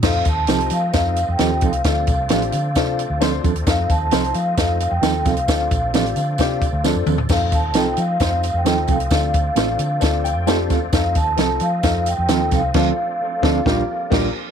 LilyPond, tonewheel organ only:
<<
  \new Staff \with { instrumentName = "Tonewheel organ" } { \time 4/4 \key f \mixolydian \tempo 4 = 132 << { ees'1 | d'1 | ees'1 | d'1 |
ees'1 | d'1 | ees'1 | d'1 | } \\ { c'1~ | c'1~ | c'1~ | c'1 |
c'1~ | c'1~ | c'1~ | c'2 bes2 | } >> }
  \new Staff \with { instrumentName = "Tonewheel organ" } { \clef bass \time 4/4 \key f \mixolydian << { a1 | a1~ | a1~ | a1~ |
a1~ | a1~ | a1 | a2 g2 | } \\ { f1~ | f1~ | f1~ | f1~ |
f1~ | f1 | f1~ | f1 | } >> }
>>